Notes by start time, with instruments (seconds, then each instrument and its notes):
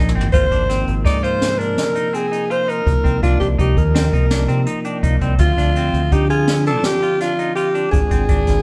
Already playing: fingered electric bass A#1, tonewheel organ C3 F3 A#3 D#4 G#5
0.09 mid tom
0.15 fingered electric bass G#1, clean electric guitar C4
0.21 floor tom
0.33 fingered electric bass G#1, tonewheel organ C3 F3 A#3 D#4, clean electric guitar F4, alto saxophone C5, kick, closed hi-hat
0.51 fingered electric bass G#1, clean electric guitar D4, kick, closed hi-hat
0.69 clean electric guitar C4, snare, closed hi-hat
0.88 fingered electric bass G#1, closed hi-hat
1.05 fingered electric bass G#2, clean electric guitar D#4, alto saxophone D5, kick, snare, closed hi-hat
1.23 clean electric guitar F4, alto saxophone C5, closed hi-hat
1.42 snare, closed hi-hat
1.58 clean electric guitar D4, alto saxophone A#4, closed hi-hat
1.78 snare, closed hi-hat
1.95 clean electric guitar D#4, closed hi-hat
2.13 clean electric guitar C4, alto saxophone G#4, closed hi-hat
2.32 clean electric guitar D#4, closed hi-hat
2.50 clean electric guitar F4, alto saxophone C5, closed hi-hat
2.68 clean electric guitar D#4, alto saxophone A#4, closed hi-hat
2.85 fingered electric bass C2, tonewheel organ C3 F3 A#3 D#4, kick, closed hi-hat
3.04 fingered electric bass C2, clean electric guitar C4, kick, closed hi-hat
3.22 fingered electric bass C2, clean electric guitar D4, alto saxophone F4, kick, closed hi-hat
3.40 fingered electric bass C2, alto saxophone G4, kick, closed hi-hat
3.59 fingered electric bass C2, clean electric guitar D#4, alto saxophone G4, kick, closed hi-hat
3.77 fingered electric bass D#2, alto saxophone A#4, kick, closed hi-hat
3.95 clean electric guitar C4, snare, closed hi-hat
4.13 fingered electric bass C2, clean electric guitar D#4, kick, closed hi-hat
4.31 clean electric guitar D4, snare, closed hi-hat
4.48 fingered electric bass C3, clean electric guitar C4, closed hi-hat
4.66 clean electric guitar D#4, closed hi-hat
4.84 clean electric guitar D4, tonewheel organ G5, closed hi-hat
5.03 fingered electric bass C2, clean electric guitar D#4, tonewheel organ F5, kick, closed hi-hat
5.21 fingered electric bass C2, clean electric guitar C4, tonewheel organ D5, kick, closed hi-hat
5.38 fingered electric bass D2, tonewheel organ D3 F3 C4 F4, clean electric guitar F4, alto saxophone F4, kick, closed hi-hat
5.57 fingered electric bass D2, clean electric guitar D4, kick, snare, closed hi-hat
5.76 clean electric guitar C4, closed hi-hat
5.94 fingered electric bass D2, closed hi-hat
6.12 fingered electric bass D3, clean electric guitar D#4, alto saxophone G4, kick, closed hi-hat
6.30 clean electric guitar F4, alto saxophone G#4, closed hi-hat
6.47 snare, closed hi-hat
6.66 clean electric guitar D4, alto saxophone A4, snare, closed hi-hat
6.84 alto saxophone G4, snare, closed hi-hat
7.02 clean electric guitar F4, closed hi-hat
7.20 clean electric guitar D4, alto saxophone F4, snare, closed hi-hat
7.39 clean electric guitar D#4, closed hi-hat
7.56 clean electric guitar F4, alto saxophone G4, closed hi-hat
7.75 clean electric guitar D4, closed hi-hat
7.91 fingered electric bass G#1, tonewheel organ G#3 C4 D4 F4, alto saxophone G#4, kick, closed hi-hat
8.11 fingered electric bass G#1, clean electric guitar C4, kick, closed hi-hat
8.29 fingered electric bass G#1, clean electric guitar D4, kick, closed hi-hat
8.47 fingered electric bass G#1, kick, snare, closed hi-hat